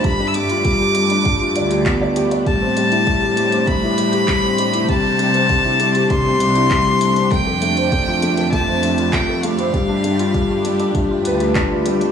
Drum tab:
HH |x-xxx-xxx-xxx-xx|x-xxx-xxx-xxx-xx|x-xxx-xxx-xxx-xx|x-xxx-xxx-xxx-xx|
CP |------------x---|------------x---|------------x---|------------x---|
BD |o---o---o---o---|o---o---o---o---|o---o---o---o---|o---o---o---o---|

HH |x-xxx-xxx-xxx-xx|
CP |------------x---|
BD |o---o---o---o---|